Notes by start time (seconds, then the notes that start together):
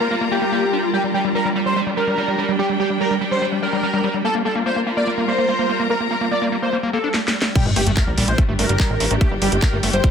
Already playing: G3 F4 A#4 A#5
0.00 A#3 A#4
0.11 A#3
0.21 A#3
0.31 A#3 G4
0.42 A#3
0.52 A#3
0.62 C4
0.73 D4
0.83 F4
0.93 G3 D4 G4
1.04 G3
1.14 G3 G4
1.24 G3
1.35 G3 A#4
1.45 G3
1.52 G3 G4
1.66 G3 C5
1.76 G3
1.87 G3
1.97 G3 A#4
2.07 G3
2.17 G3 G5
2.28 G3
2.38 G3
2.49 G3
2.59 G3 G4
2.69 G3
2.80 G3 G4
2.90 G3
3.00 G3 A#4
3.11 G3
3.21 G3
3.31 G3 C5
3.42 G3
3.52 G3
3.62 G3 A#4
3.73 G3
3.83 G3
3.93 G3
4.04 G3
4.14 G3
4.24 A#3 F4 A4
4.35 A#3
4.45 A#3 A4
4.55 A#3
4.66 A#3 A#4 C5
4.76 A#3
4.87 A#3
4.97 A#3 D5
5.07 A#3
5.18 A#3 A#5
5.28 A#3 C5
5.38 A#3
5.49 A#3
5.59 A#3
5.69 A#3
5.80 A#3
5.90 A#3 A#4
6.00 A#3
6.11 A#3 A#4
6.21 A#3
6.31 A#3 D5
6.42 A#3
6.52 A#3
6.62 A#3 C5
6.73 A#3
6.83 A#3
6.93 A#3 A4
7.04 D4
7.14 snare
7.28 snare
7.42 snare
7.55 G3 D4 G4, kick, closed hi-hat, crash, sub drop
7.66 G1 A3
7.76 G1 A3 G4, open hi-hat
7.87 G1 A3, closed hi-hat
7.91 G4
7.97 A3 A#4, kick, clap, closed hi-hat
8.07 A#1 G3
8.18 A#1 G3, open hi-hat
8.28 A#1 A3 C5, closed hi-hat
8.38 A3, kick, closed hi-hat
8.49 G1 A3
8.59 G1 A3 A#4 G5, open hi-hat
8.69 G1 G3, closed hi-hat
8.80 G3, kick, clap, closed hi-hat
8.90 A1 A3
9.00 A1 A3, open hi-hat
9.11 A1 A3, closed hi-hat
9.21 A3 G4, kick, closed hi-hat
9.31 G1 G3
9.42 G1 G3 G4, open hi-hat
9.52 G1 A3, closed hi-hat
9.62 A3 A#4, kick, clap, closed hi-hat
9.73 G1 A3
9.83 G1 A3, open hi-hat
9.93 G1 G3 C5, closed hi-hat
10.04 G3, kick, closed hi-hat